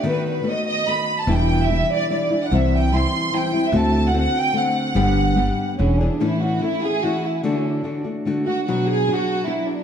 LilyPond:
<<
  \new Staff \with { instrumentName = "Violin section" } { \time 3/4 \key e \minor \tempo 4 = 146 b'8 b'8 dis''8 dis''8 b''8. a''16 | g''8. e''8. d''8 d''8. fis''16 | e''8 g''8 c'''4 g''8. e''16 | a''8. fis''16 fis''8 g''8 fis''4~ |
fis''2 cis'8 d'8 | \key a \major e'8 fis'8 e'8 gis'8 fis'8 e'8 | d'16 cis'16 d'4 r4 fis'8 | fis'8 gis'8. fis'8. e'8 d'8 | }
  \new Staff \with { instrumentName = "Nylon-string guitar" } { \time 3/4 \key e \minor <dis a b fis'>4 <dis a b fis'>4 <dis a b fis'>4 | <e, b, e g d' e'>4 <e g d' e'>4 <e g d' e'>8 <e g d' e'>8 | <c e g c' e'>4 <e g c' e'>4 <e g c' e'>8 <g c' e'>8 | <d a c' fis'>4 <d a c' fis'>4 <d a c' fis'>4 |
<g, d g b d' g'>4 <g b d' g'>4 <e b d' gis'>8 <e b d' gis'>8 | \key a \major <a, e a cis' e'>4 <e a cis' e'>8 <a cis' e'>8 <e a cis' e'>4 | <d a d' fis'>4 <d a d' fis'>8 <a d' fis'>8 <d a d' fis'>8 <a d' fis'>8 | <b, fis b d' fis'>4 <fis b d' fis'>4 <fis b d' fis'>4 | }
  \new Staff \with { instrumentName = "Upright bass" } { \clef bass \time 3/4 \key e \minor r2. | e,,2 r4 | c,2 r4 | d,2 r4 |
g,,2 e,,4 | \key a \major r2. | r2. | r2. | }
>>